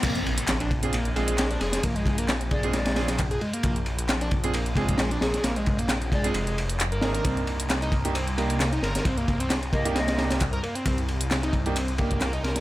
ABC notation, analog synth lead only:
X:1
M:4/4
L:1/16
Q:"Swing 16ths" 1/4=133
K:Bbmix
V:1 name="Analog synth lead"
B, z4 D z2 B, z A,3 D A A | B, A,2 B, z2 A,4 z3 A A, B, | B, z4 D z2 B, z A,3 D A A | B, A,2 B, z2 A,4 z3 B, A B |
C z4 E z2 C z B,3 E B B | C B,2 C z2 B,4 z3 B B, C | C z4 E z2 C z B,3 E B B |]